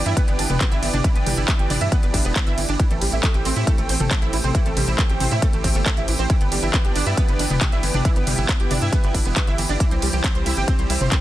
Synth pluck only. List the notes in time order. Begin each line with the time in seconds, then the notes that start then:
0.06 E4
0.17 B3
0.28 B3
0.39 D4
0.50 B3
0.60 B3
0.71 E4
0.82 E3
0.93 D4
1.04 E3
1.15 B3
1.26 G3
1.37 E4
1.48 B3
1.59 G4
1.70 D4
1.81 E4
1.92 B3
2.03 B3
2.14 D4
2.25 B3
2.36 B3
2.47 E4
2.58 E3
2.69 D4
2.80 E3
2.91 A3
3.02 G3
3.13 E4
3.24 A3
3.34 G4
3.45 C4
3.56 E4
3.67 A3
3.78 A3
3.89 C4
4.00 A3
4.11 A3
4.22 E4
4.33 E3
4.44 C4
4.55 E3
4.66 A3
4.77 G3
4.88 E4
4.99 A3
5.10 G4
5.20 C4
5.31 E4
5.42 A3
5.53 A3
5.64 C4
5.75 A3
5.86 A3
5.97 E4
6.08 E3
6.19 C4
6.30 E3
6.41 B3
6.52 G3
6.63 E4
6.74 B3
6.85 G4
6.96 D4
7.07 E4
7.17 B3
7.28 B3
7.39 D4
7.50 B3
7.61 B3
7.72 E4
7.83 E3
7.94 D4
8.05 E3
8.16 B3
8.27 G3
8.38 E4
8.49 B3
8.60 G4
8.71 D4
8.82 E4
8.93 B3
9.04 B3
9.15 D4
9.26 B3
9.37 B3
9.47 E4
9.58 E3
9.69 D4
9.80 E3
9.91 C4
10.02 G3
10.13 G4
10.24 C4
10.35 C5
10.46 E4
10.57 G4
10.68 C4
10.79 C4
10.90 E4
11.01 C4
11.12 C4